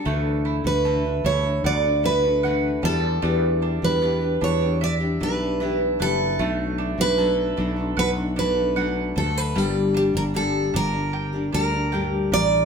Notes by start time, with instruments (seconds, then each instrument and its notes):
Already playing: mandolin D4 G5, steel-string acoustic guitar A4
0.05 fretless electric bass D2, nylon-string guitar D3 E3 A3 D4 F#4, mandolin A3
0.45 mandolin E4
0.64 fretless electric bass D2, nylon-string guitar A3 D4 F#4, steel-string acoustic guitar B4
0.84 nylon-string guitar D3 E3 A3 D4 F#4, mandolin A4
1.05 nylon-string guitar A3 D4 F#4
1.24 fretless electric bass D2, nylon-string guitar E3 A3 D4 F#4, mandolin E4, steel-string acoustic guitar C#5
1.43 nylon-string guitar A3 D4 F#4
1.64 fretless electric bass D2, steel-string acoustic guitar D5, mandolin F#5
1.84 nylon-string guitar A3 D4 F#4
2.03 nylon-string guitar E3 A3 D4 F#4, mandolin E4, steel-string acoustic guitar B4
2.23 nylon-string guitar A3 D4 F#4
2.43 nylon-string guitar D3 E3 A3 D4 F#4, mandolin F#5
2.82 fretless electric bass E2, nylon-string guitar E3 B3 D4 G4, mandolin G3, steel-string acoustic guitar A4
3.22 fretless electric bass E2, nylon-string guitar E3 B3 D4 G4, mandolin G3
3.62 mandolin D4
3.82 fretless electric bass E2, nylon-string guitar B3 D4 G4, steel-string acoustic guitar B4
4.02 nylon-string guitar E3 B3 D4 G4, mandolin B4
4.21 nylon-string guitar B3 D4 G4
4.41 fretless electric bass E2, nylon-string guitar E3 B3 D4 G4, mandolin D4, steel-string acoustic guitar C#5
4.61 nylon-string guitar B3 D4 G4
4.81 steel-string acoustic guitar D5, mandolin E5
5.00 nylon-string guitar B3 D4 G4
5.20 fretless electric bass B1, nylon-string guitar E3 B3 D4 G4, mandolin D4, steel-string acoustic guitar B4
5.40 nylon-string guitar B3 D4 G4
5.60 nylon-string guitar E3 B3 D4 G4, mandolin E5
5.82 steel-string acoustic guitar A4
5.99 fretless electric bass F#1, nylon-string guitar E3 B3 D4 G4, steel-string acoustic guitar A4, mandolin B4
6.39 fretless electric bass B1, nylon-string guitar B2 F#3 A3 D4 F#4, mandolin A3
6.78 mandolin D4
6.98 fretless electric bass B1, nylon-string guitar A3 D4 F#4, steel-string acoustic guitar B4
7.17 nylon-string guitar B2 F#3 A3 D4 F#4, mandolin A4
7.57 fretless electric bass B1, nylon-string guitar F#3 A3 D4 F#4, mandolin D4
7.76 nylon-string guitar A3 D4 F#4
7.97 fretless electric bass B1, steel-string acoustic guitar B4, mandolin F#5
8.16 nylon-string guitar A3 D4 F#4
8.36 nylon-string guitar F#3 A3 D4 F#4, mandolin D4, steel-string acoustic guitar B4
8.55 nylon-string guitar A3 D4 F#4
8.76 nylon-string guitar B2 F#3 A3 D4 F#4, mandolin F#5
9.16 fretless electric bass D2, nylon-string guitar F#3 A3 D4 F#4, mandolin A4, steel-string acoustic guitar A4
9.37 steel-string acoustic guitar B4
9.55 fretless electric bass G1, nylon-string guitar G2 D3 G3 A#3 D4 G4, mandolin G3, steel-string acoustic guitar A4
9.94 mandolin D4, steel-string acoustic guitar G4
10.14 fretless electric bass G1, nylon-string guitar G3 A#3 D4 G4, steel-string acoustic guitar A#4
10.34 nylon-string guitar G2 D3 G3 A#3 D4 G4, steel-string acoustic guitar A4
10.73 fretless electric bass G1, nylon-string guitar G3 A#3 D4 G4, mandolin D4, steel-string acoustic guitar A#4
10.93 nylon-string guitar G3 A#3 D4 G4
11.13 mandolin G5
11.33 nylon-string guitar G3 A#3 D4 G4
11.53 fretless electric bass D2, nylon-string guitar G3 A#3 D4 G4, mandolin D4, steel-string acoustic guitar A#4
11.72 nylon-string guitar G3 A#3 D4 G4
11.92 nylon-string guitar G2 D3 G3 A#3 D4 G4, mandolin G5
12.32 fretless electric bass A1, nylon-string guitar G3 A#3 D4 G4, mandolin A#4, steel-string acoustic guitar D5